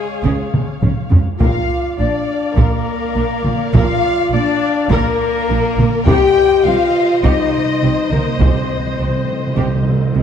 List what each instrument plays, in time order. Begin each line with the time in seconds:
Already playing: french horn section G#3, flute section G#4, violin section G#4 F5, viola section C#5
0.24 double bass section C#2, cello section C#3, viola section G#4, taiko
0.54 taiko mid
0.81 double bass section C#2, cello section C#3, viola section C#4, taiko low-mid
1.11 double bass section C#2, cello section C#3, viola section F4, taiko low
1.38 double bass section A#1, cello section A#2, french horn section F4, viola section A#4 D5, flute section F5, violin section F5, taiko
1.98 double bass section A#1, cello section A#2, french horn section D4, viola section D4, flute section D5, violin section D5
2.56 double bass section A#1, cello section A#2, french horn section A#3, flute section A#4, viola section A#4, violin section A#4, taiko
3.15 double bass section A#1, cello section A#2, viola section D4
3.44 double bass section A#1, cello section A#2, viola section F4, taiko mid
3.71 double bass section A#1, cello section A#2, french horn section F4, viola section A#4, flute section F5, violin section F5, taiko
4.31 double bass section A#1, cello section A#2, french horn section D4, viola section D4, flute section D5, violin section D5
4.89 double bass section A#1, cello section A#2, french horn section A#3, flute section A#4, violin section A#4, viola section A#4, taiko
5.49 double bass section A#1, cello section A#2, viola section D4
5.77 double bass section A#1, cello section A#2, viola section F4, taiko mid
6.06 double bass section C2, cello section C3, french horn section G4, viola section G4 C5, violin section D#5 G5, flute section G5, taiko
6.15 timpani C3
6.23 timpani C3
6.30 timpani C3
6.44 timpani C3
6.52 timpani C3
6.60 timpani C3
6.64 double bass section C2, cello section C3, viola section C4, french horn section F4, flute section F5, violin section F5
6.75 timpani C3
6.84 timpani C3
6.90 timpani C3
6.99 timpani C3
7.06 timpani C3
7.14 timpani C3
7.20 double bass section C2, timpani C3, cello section C3, french horn section D#4, violin section D#5, flute section D#5
7.25 timpani C3, viola section G4, taiko
7.35 timpani C3
7.43 timpani C3
7.51 timpani C3
7.58 timpani C3
7.65 timpani C3
7.73 timpani C3
7.82 double bass section C2, cello section C3, timpani C3, viola section C4
7.88 timpani C3
7.97 timpani C3
8.04 timpani C3
8.10 double bass section C2, cello section C3, timpani C3, french horn section A#3, viola section D#4, violin section A#4, flute section A#4, taiko mid
8.19 timpani C3
8.27 timpani C3
8.35 timpani C3, violin section C5
8.39 double bass section C2, cello section C3, timpani C3, french horn section C4, viola section G4, flute section C5, taiko
8.49 timpani C3
8.56 timpani C3
8.65 timpani C3
8.72 timpani C3
8.79 timpani C3
8.86 timpani C3
8.94 timpani C3
8.98 double bass section C2, cello section C3, timpani C3, viola section C4
9.08 timpani C3
9.16 timpani C3
9.25 timpani C3
9.31 timpani C3
9.39 timpani C3
9.47 timpani C3
9.54 double bass section C2, timpani C3, cello section C3, viola section G4, taiko
9.59 timpani C3
9.68 timpani C3
9.76 timpani C3
9.83 timpani C3
9.89 timpani C3
9.97 timpani C3
10.05 timpani C3
10.12 double bass section C2, timpani C3, cello section C3, viola section C4
10.19 timpani C3